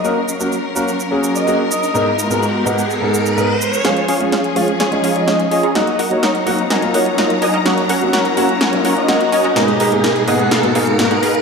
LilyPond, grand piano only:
\new Staff \with { instrumentName = "Grand piano" } { \time 4/4 \key fis \major \tempo 4 = 126 <ais cis' fis' ais'>16 r8 <ais cis' fis' ais'>16 r8 <ais cis' fis' ais'>16 r8 <ais cis' fis' gis'>8. <ais cis' fis' gis'>16 r8. | <gis, b dis' gis' ais'>16 r8 <gis, b dis' gis' ais'>16 r8 <gis, b dis' gis' ais'>16 r8 <gis, b dis' gis' ais'>8. <gis, b dis' gis' ais'>16 r8. | <eis gis cis' eis'>16 r8 <eis gis cis' eis'>16 r8 <eis gis cis' eis'>16 r8 <eis gis cis' dis'>8. <eis gis cis' dis'>16 r8. | <fis ais dis' fis'>16 r8 <fis ais dis' fis'>16 r8 <fis ais dis' fis'>16 r8 <fis ais dis' eis'>8. <fis ais dis' eis'>16 r8. |
<fis ais cis' fis'>16 r8 <fis ais cis' fis'>16 r8 <fis ais cis' fis'>16 r8 <fis ais cis' dis'>8. <fis ais cis' dis'>16 r8. | <gis, ais b dis' gis'>16 r8 <gis, ais b dis' gis'>16 r8 <gis, ais b dis' gis'>16 r8 <gis, ais b dis' fis'>8. <gis, ais b dis' fis'>16 r8. | }